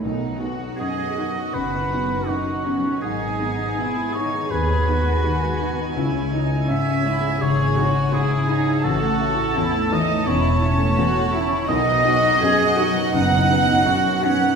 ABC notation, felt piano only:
X:1
M:4/4
L:1/8
Q:1/4=83
K:Bmix
V:1 name="Felt piano" clef=bass
B,,, D F,, D F,, D F,, D | G,, D B,, D D, D D, D | C,, D G,, E G,, D G,, D | A,,, E E,, E, E,, E E,, E |
B,,, D F,, D F,, D F,, D |]